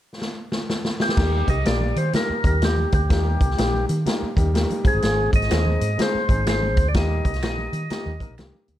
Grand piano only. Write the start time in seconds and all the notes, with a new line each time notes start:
1.17 G3 A#3 D#4 G4
1.65 G3 A#3 D#4 G4
2.13 G3 A#3 D#4 G4
2.44 G3 A#3 D#4 G4
2.62 G3 A#3 D#4 G4
3.09 G3 A#3 D#4 G4
3.57 G3 A#3 D#4 G4
4.06 G3 A#3 D#4 G4
4.36 G3 A#3 D#4 G4
4.54 G3 A#3 D#4 G4
4.84 G#3 C4 D#4 G#4
5.49 G#3 C4 D#4 G#4
5.98 G#3 C4 D#4 G#4
6.28 G#3 C4 D#4 G#4
6.46 G#3 C4 D#4 G#4
6.94 G3 A#3 D#4 G4
7.43 G3 A#3 D#4 G4
7.90 G3 A#3 D#4 G4
8.20 G3 A#3 D#4 A#4
8.38 G3 A#3 D#4 G4